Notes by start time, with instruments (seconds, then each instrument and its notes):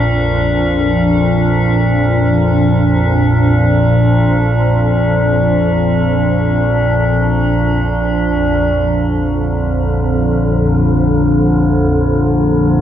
Already playing: synth drone A#1 F2 D4
8.62 synth drone A#1 F2 D3, ambient pad A#3
9.23 ambient pad F4
9.67 ambient pad A#4